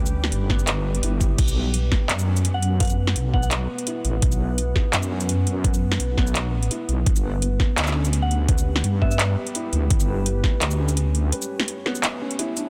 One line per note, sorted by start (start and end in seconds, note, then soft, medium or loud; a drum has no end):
0.00 0.31 D2 loud
0.00 1.38 G3 medium
0.00 0.50 B3 medium
0.00 1.41 C#4 medium
0.00 1.03 E4 medium
0.00 1.38 G4 medium
0.00 0.48 B4 medium
0.00 7.06 B4 medium
0.00 7.07 D6 medium
0.06 shaker medium
0.24 snare medium
0.32 1.02 G1 loud
0.32 closed hi-hat medium
0.50 0.66 B3 loud
0.50 kick medium
0.50 snare soft
0.59 shaker soft
0.67 clap loud
0.67 closed hi-hat medium
0.95 closed hi-hat soft
1.03 1.37 G1 medium
1.03 1.20 E4 medium
1.03 closed hi-hat medium
1.21 kick medium
1.21 closed hi-hat soft
1.21 shaker soft
1.38 1.90 B1 loud
1.38 7.61 B3 loud
1.38 kick loud
1.38 closed hi-hat medium
1.38 crash medium
1.48 shaker medium
1.56 2.25 B3 medium
1.74 closed hi-hat medium
1.92 kick medium
1.92 snare soft
2.04 8.08 F#5 loud
2.09 3.14 F#2 loud
2.09 clap loud
2.09 closed hi-hat medium
2.19 shaker medium
2.27 2.79 C#4 medium
2.36 closed hi-hat soft
2.36 shaker soft
2.45 closed hi-hat medium
2.54 2.75 F#5 loud
2.62 closed hi-hat soft
2.80 3.32 B4 medium
2.80 3.02 F#5 medium
2.80 kick loud
2.80 closed hi-hat medium
2.83 closed hi-hat medium
2.85 closed hi-hat medium
2.87 closed hi-hat soft
2.87 shaker medium
3.07 snare medium
3.16 3.68 B1 loud
3.16 closed hi-hat medium
3.34 3.50 B3 loud
3.34 3.40 F#5 medium
3.34 kick medium
3.43 3.48 F#5 medium
3.43 shaker soft
3.51 clap loud
3.51 closed hi-hat medium
3.78 closed hi-hat soft
3.87 4.04 E4 medium
3.87 closed hi-hat medium
4.05 4.21 A1 medium
4.05 closed hi-hat soft
4.22 4.74 B1 loud
4.22 kick loud
4.22 closed hi-hat medium
4.32 shaker medium
4.40 5.09 B3 medium
4.58 closed hi-hat medium
4.76 kick medium
4.76 snare soft
4.93 5.98 F#2 loud
4.93 clap loud
4.93 closed hi-hat medium
5.03 shaker medium
5.11 5.63 C#4 medium
5.20 closed hi-hat soft
5.20 shaker soft
5.29 closed hi-hat medium
5.47 closed hi-hat soft
5.64 6.16 B4 medium
5.64 kick loud
5.64 closed hi-hat medium
5.74 shaker medium
5.92 snare medium
6.00 6.49 B1 loud
6.00 closed hi-hat medium
6.17 6.34 B3 loud
6.17 kick medium
6.17 snare soft
6.27 shaker soft
6.35 clap loud
6.35 closed hi-hat medium
6.49 6.69 A#1 loud
6.63 closed hi-hat soft
6.71 6.88 E4 medium
6.71 closed hi-hat medium
6.89 7.05 B1 medium
6.89 closed hi-hat soft
7.06 7.58 G1 loud
7.06 12.69 G3 medium
7.06 kick loud
7.06 closed hi-hat medium
7.16 shaker medium
7.24 7.93 B3 medium
7.30 12.69 G4 medium
7.42 closed hi-hat medium
7.58 12.69 B4 medium
7.58 kick medium
7.58 snare soft
7.77 8.83 D2 loud
7.77 clap loud
7.77 closed hi-hat medium
7.82 clap loud
7.87 clap medium
7.87 shaker medium
7.91 8.47 C#4 medium
7.91 clap medium
8.05 closed hi-hat soft
8.05 shaker soft
8.13 closed hi-hat medium
8.22 8.43 F#5 loud
8.31 closed hi-hat soft
8.48 9.00 B4 medium
8.48 kick loud
8.48 closed hi-hat medium
8.58 shaker medium
8.76 snare medium
8.84 9.36 G2 loud
8.84 closed hi-hat medium
9.02 9.19 B3 loud
9.02 9.08 E5 medium
9.02 kick medium
9.11 9.16 E5 medium
9.11 shaker soft
9.19 clap loud
9.19 closed hi-hat medium
9.47 closed hi-hat soft
9.55 9.72 E4 medium
9.55 closed hi-hat medium
9.73 9.89 D2 loud
9.73 closed hi-hat soft
9.90 10.42 G1 loud
9.90 kick loud
9.90 closed hi-hat medium
10.00 shaker medium
10.08 10.78 B3 medium
10.26 closed hi-hat medium
10.44 kick medium
10.44 snare soft
10.61 11.32 D2 loud
10.61 clap loud
10.61 closed hi-hat medium
10.71 12.69 C#5 medium
10.71 shaker medium
10.79 11.31 C#4 medium
10.88 closed hi-hat soft
10.88 shaker soft
10.97 closed hi-hat medium
11.15 closed hi-hat soft
11.32 11.84 B4 medium
11.32 closed hi-hat medium
11.42 shaker medium
11.60 snare medium
11.68 closed hi-hat medium
11.86 12.03 B3 loud
11.86 snare soft
11.95 shaker soft
12.03 clap loud
12.03 closed hi-hat medium
12.21 12.32 C#4 medium
12.31 closed hi-hat soft
12.39 12.49 E4 loud
12.39 closed hi-hat medium
12.57 12.69 D4 medium
12.57 closed hi-hat soft
12.57 shaker soft